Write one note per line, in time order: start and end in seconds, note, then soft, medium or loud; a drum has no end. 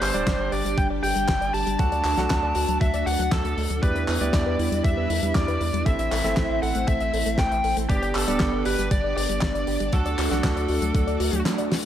0.00 0.12 G1 loud
0.00 1.77 G3 medium
0.00 0.11 B3 medium
0.00 0.11 D4 medium
0.00 3.79 D4 medium
0.00 0.11 G4 medium
0.00 1.77 G4 medium
0.00 0.12 G4 medium
0.00 0.54 C5 loud
0.00 0.11 D5 medium
0.00 3.79 D5 medium
0.00 clap medium
0.00 open hi-hat loud
0.14 0.24 D1 medium
0.14 0.25 G3 loud
0.14 1.00 G3 medium
0.14 1.00 D4 medium
0.14 1.00 G4 medium
0.14 1.00 D5 loud
0.14 closed hi-hat medium
0.27 0.37 G1 loud
0.27 0.37 G3 loud
0.27 kick loud
0.27 snare loud
0.27 clap medium
0.27 closed hi-hat medium
0.39 0.50 G1 medium
0.39 0.52 D5 loud
0.52 0.63 G1 loud
0.52 0.63 G4 medium
0.52 0.79 D5 loud
0.52 open hi-hat loud
0.65 0.75 G1 medium
0.65 0.76 G3 loud
0.65 closed hi-hat medium
0.78 0.88 G1 loud
0.78 0.88 G3 loud
0.78 0.85 G5 loud
0.78 kick loud
0.78 closed hi-hat medium
0.90 1.01 G1 medium
0.90 1.02 D5 loud
1.03 1.13 G1 medium
1.03 1.14 G4 medium
1.03 1.53 G5 loud
1.03 open hi-hat loud
1.16 1.26 G1 medium
1.16 1.26 G3 loud
1.16 closed hi-hat medium
1.28 1.39 G1 loud
1.28 1.39 G3 loud
1.28 kick loud
1.28 snare loud
1.28 clap medium
1.28 closed hi-hat medium
1.41 1.52 G1 medium
1.41 1.53 D5 loud
1.41 closed hi-hat soft
1.54 1.64 G1 medium
1.54 1.64 G4 medium
1.54 1.78 A5 loud
1.54 open hi-hat medium
1.67 1.77 G1 medium
1.67 1.77 G3 loud
1.67 closed hi-hat medium
1.79 1.90 D2 loud
1.79 1.90 F#3 loud
1.79 3.81 A3 medium
1.79 2.15 D4 medium
1.79 2.15 F#4 medium
1.79 3.81 F#4 medium
1.79 2.15 A4 medium
1.79 2.15 F#5 medium
1.79 2.77 A5 loud
1.79 kick loud
1.79 closed hi-hat medium
1.92 2.02 D2 medium
1.92 2.04 D5 loud
1.92 closed hi-hat medium
2.04 2.15 D2 medium
2.04 2.15 F#4 medium
2.04 clap medium
2.04 open hi-hat loud
2.17 2.28 C2 medium
2.17 2.28 F#3 loud
2.17 3.03 D4 medium
2.17 3.03 F#4 medium
2.17 3.03 A4 medium
2.17 3.03 F#5 loud
2.17 snare soft
2.17 closed hi-hat medium
2.30 2.40 D2 loud
2.30 2.41 F#3 loud
2.30 kick loud
2.30 snare loud
2.30 clap medium
2.30 closed hi-hat medium
2.43 2.53 D2 medium
2.43 2.55 D5 loud
2.55 2.66 D2 loud
2.55 2.66 F#4 medium
2.55 open hi-hat loud
2.68 2.79 D2 medium
2.68 2.79 F#3 loud
2.68 closed hi-hat medium
2.81 2.91 D2 loud
2.81 2.92 F#3 loud
2.81 3.07 E5 loud
2.81 kick loud
2.81 closed hi-hat medium
2.94 3.04 D2 medium
2.94 3.06 D5 loud
2.94 closed hi-hat medium
3.06 3.17 D2 loud
3.06 3.19 F#4 medium
3.06 3.33 F#5 loud
3.06 open hi-hat loud
3.19 3.30 D2 medium
3.19 3.30 F#3 loud
3.19 closed hi-hat medium
3.32 3.42 D2 loud
3.32 3.42 F#3 loud
3.32 3.82 A4 medium
3.32 kick loud
3.32 snare loud
3.32 clap medium
3.32 closed hi-hat medium
3.45 3.55 D2 medium
3.45 3.51 A3 medium
3.45 closed hi-hat medium
3.57 3.68 D2 medium
3.57 3.68 A3 medium
3.57 open hi-hat loud
3.70 3.80 D2 medium
3.70 3.81 F#3 medium
3.70 closed hi-hat medium
3.83 3.93 E2 loud
3.83 3.93 G3 loud
3.83 5.84 G3 medium
3.83 4.18 B3 medium
3.83 5.84 D4 medium
3.83 4.18 E4 medium
3.83 7.86 E4 medium
3.83 4.18 G4 medium
3.83 4.35 B4 loud
3.83 5.84 B4 medium
3.83 4.18 D5 medium
3.83 kick loud
3.83 closed hi-hat medium
3.96 4.06 E2 medium
3.96 4.08 B4 loud
3.96 closed hi-hat medium
4.08 4.19 E2 medium
4.08 4.19 E4 medium
4.08 clap medium
4.08 open hi-hat loud
4.21 4.31 D2 medium
4.21 4.31 G3 loud
4.21 5.07 B3 medium
4.21 5.07 E4 medium
4.21 5.07 G4 medium
4.21 5.07 D5 loud
4.21 closed hi-hat medium
4.33 4.44 E2 loud
4.33 4.44 G3 loud
4.33 4.81 D5 loud
4.33 kick loud
4.33 snare loud
4.33 clap medium
4.33 closed hi-hat medium
4.46 4.57 E2 medium
4.46 4.58 B4 loud
4.59 4.69 E2 loud
4.59 4.70 E4 medium
4.59 open hi-hat loud
4.72 4.82 E2 medium
4.72 4.82 G3 loud
4.72 closed hi-hat medium
4.84 4.95 E2 loud
4.84 4.95 G3 loud
4.84 5.35 E5 loud
4.84 kick loud
4.84 closed hi-hat medium
4.97 5.07 E2 medium
4.97 5.09 B4 loud
5.10 5.20 E2 medium
5.10 5.20 E4 medium
5.10 open hi-hat loud
5.23 5.33 E2 medium
5.23 5.33 G3 loud
5.23 closed hi-hat medium
5.35 5.46 E2 loud
5.35 5.46 G3 loud
5.35 5.83 D5 loud
5.35 kick loud
5.35 snare loud
5.35 clap medium
5.35 closed hi-hat medium
5.48 5.58 E2 medium
5.48 5.60 B4 loud
5.48 closed hi-hat medium
5.61 5.71 E2 medium
5.61 5.71 E4 medium
5.61 open hi-hat medium
5.73 5.84 E2 medium
5.73 5.84 G3 loud
5.73 closed hi-hat medium
5.86 5.96 A1 loud
5.86 5.97 A3 loud
5.86 7.88 A3 medium
5.86 6.21 C4 medium
5.86 7.88 C4 medium
5.86 6.21 E4 medium
5.86 6.21 A4 medium
5.86 7.88 C5 medium
5.86 6.58 E5 loud
5.86 6.21 E5 medium
5.86 kick loud
5.86 closed hi-hat medium
5.99 6.09 A1 medium
5.99 6.11 E5 loud
5.99 closed hi-hat medium
6.12 6.22 A1 loud
6.12 6.22 A4 medium
6.12 clap medium
6.12 open hi-hat loud
6.24 6.35 G1 medium
6.24 6.35 A3 loud
6.24 7.10 C4 medium
6.24 7.10 E4 medium
6.24 7.10 A4 medium
6.24 7.10 E5 loud
6.24 snare soft
6.24 closed hi-hat medium
6.37 6.47 A1 loud
6.37 6.48 A3 loud
6.37 kick loud
6.37 snare loud
6.37 clap medium
6.37 closed hi-hat medium
6.50 6.60 A1 medium
6.50 6.62 E5 loud
6.62 6.73 A1 loud
6.62 6.73 A4 medium
6.62 6.86 F#5 loud
6.62 open hi-hat loud
6.75 6.85 A1 medium
6.75 6.86 A3 loud
6.75 closed hi-hat medium
6.88 6.98 A1 loud
6.88 6.98 A3 loud
6.88 7.40 E5 loud
6.88 kick loud
6.88 closed hi-hat medium
7.00 7.11 A1 medium
7.00 7.13 E5 loud
7.00 closed hi-hat medium
7.13 7.24 A1 medium
7.13 7.24 A4 medium
7.13 open hi-hat loud
7.26 7.36 A1 medium
7.26 7.37 A3 loud
7.26 closed hi-hat medium
7.38 7.49 A1 loud
7.38 7.49 A3 loud
7.38 7.74 G5 loud
7.38 kick loud
7.38 snare loud
7.38 clap medium
7.38 closed hi-hat medium
7.51 7.62 A1 medium
7.51 7.64 E5 loud
7.51 closed hi-hat medium
7.64 7.74 A1 medium
7.64 7.75 A4 medium
7.64 open hi-hat medium
7.77 7.87 A1 medium
7.77 7.88 A3 loud
7.77 closed hi-hat medium
7.90 8.00 G1 loud
7.90 8.00 G3 loud
7.90 8.25 B3 medium
7.90 9.91 B3 medium
7.90 8.25 D4 medium
7.90 11.85 D4 medium
7.90 9.91 G4 medium
7.90 8.13 G4 medium
7.90 8.25 G4 medium
7.90 11.85 D5 medium
7.90 8.25 D5 medium
7.90 kick loud
7.90 closed hi-hat medium
8.02 8.13 G1 medium
8.02 8.14 D5 loud
8.02 closed hi-hat medium
8.15 8.25 G1 medium
8.15 8.26 G4 medium
8.15 8.62 A4 medium
8.15 clap medium
8.15 open hi-hat loud
8.28 8.38 D1 medium
8.28 8.38 G3 loud
8.28 9.14 B3 medium
8.28 9.14 D4 medium
8.28 9.14 G4 medium
8.28 9.14 D5 loud
8.28 closed hi-hat medium
8.40 8.51 G1 loud
8.40 8.51 G3 loud
8.40 kick loud
8.40 snare loud
8.40 clap medium
8.40 closed hi-hat medium
8.53 8.63 G1 medium
8.53 8.65 D5 loud
8.65 8.76 G1 loud
8.65 8.76 G4 medium
8.65 8.90 B4 medium
8.65 open hi-hat loud
8.78 8.89 G1 medium
8.78 8.89 G3 loud
8.78 closed hi-hat medium
8.91 9.01 G1 loud
8.91 9.02 G3 loud
8.91 9.16 D5 medium
8.91 kick loud
8.91 closed hi-hat loud
9.04 9.14 G1 medium
9.04 9.16 D5 loud
9.17 9.27 G1 medium
9.17 9.27 G4 medium
9.17 9.41 D5 medium
9.17 open hi-hat loud
9.29 9.40 G1 medium
9.29 9.40 G3 loud
9.29 closed hi-hat medium
9.41 9.52 G1 loud
9.41 9.53 G3 loud
9.41 9.94 D5 medium
9.41 kick loud
9.41 snare loud
9.41 clap medium
9.41 closed hi-hat loud
9.55 9.65 G1 medium
9.55 9.67 D5 loud
9.55 closed hi-hat medium
9.67 9.78 G1 medium
9.67 9.78 G4 medium
9.67 open hi-hat loud
9.80 9.91 G1 medium
9.80 9.91 G3 loud
9.80 closed hi-hat medium
9.93 10.03 D2 loud
9.93 10.03 F#3 loud
9.93 11.85 A3 medium
9.93 10.28 D4 medium
9.93 11.85 F#4 medium
9.93 10.28 F#4 medium
9.93 10.28 A4 medium
9.93 11.42 A4 medium
9.93 10.28 F#5 medium
9.93 kick loud
9.93 closed hi-hat medium
10.06 10.16 D2 medium
10.06 10.18 D5 loud
10.06 closed hi-hat medium
10.18 10.29 D2 medium
10.18 10.29 F#4 medium
10.18 clap medium
10.18 open hi-hat loud
10.31 10.41 C2 medium
10.31 10.42 F#3 loud
10.31 11.17 D4 medium
10.31 11.17 F#4 medium
10.31 11.17 A4 medium
10.31 11.17 F#5 loud
10.31 snare soft
10.31 closed hi-hat medium
10.44 10.54 D2 loud
10.44 10.54 F#3 loud
10.44 kick loud
10.44 snare loud
10.44 clap medium
10.44 closed hi-hat medium
10.56 10.67 D2 medium
10.56 10.69 D5 loud
10.56 closed hi-hat medium
10.68 10.79 D2 loud
10.68 10.80 F#4 medium
10.68 open hi-hat loud
10.82 10.92 D2 medium
10.82 10.92 F#3 loud
10.82 closed hi-hat medium
10.95 11.05 D2 loud
10.95 11.05 F#3 loud
10.95 kick loud
10.95 closed hi-hat medium
11.07 11.18 D2 medium
11.07 11.19 D5 loud
11.07 closed hi-hat medium
11.20 11.30 D2 loud
11.20 11.31 F#4 medium
11.20 open hi-hat loud
11.33 11.43 D2 medium
11.33 11.43 F#3 loud
11.33 closed hi-hat medium
11.45 11.56 F#3 loud
11.45 snare loud
11.45 clap medium
11.45 closed hi-hat medium
11.58 11.70 D5 loud
11.58 closed hi-hat medium
11.71 11.81 F#4 medium
11.71 snare medium
11.71 open hi-hat loud